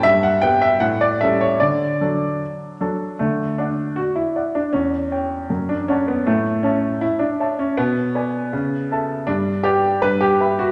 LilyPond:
\new Staff \with { instrumentName = "Grand piano" } { \time 2/4 \key d \major \tempo 4 = 79 << { g,8 <g b b'>8 a,8 <g cis' a'>8 | d8 <fis d' a'>4 <fis d' a'>8 | d8 <d'' fis''>4 <d'' fis''>8 | e,8 <cis'' g''>8 fis,8 <d'' fis'' a''>8 |
a,8 <cis'' e'' a''>4 <cis'' e'' a''>8 | b,8 <b' d'' gis''>8 cis8 <a' e'' a''>8 | g,8 <b' d'' g''>8 g,8 <b' e'' b''>8 | } \\ { e''16 fis''16 g''16 e''16 fis''16 d''16 e''16 cis''16 | d''4 r4 | a8 d'8 fis'16 e'8 d'16 | cis'4~ cis'16 d'16 cis'16 b16 |
a8 cis'8 e'16 d'8 cis'16 | b2 | d'8 g'8 b'16 g'8 fis'16 | } >> }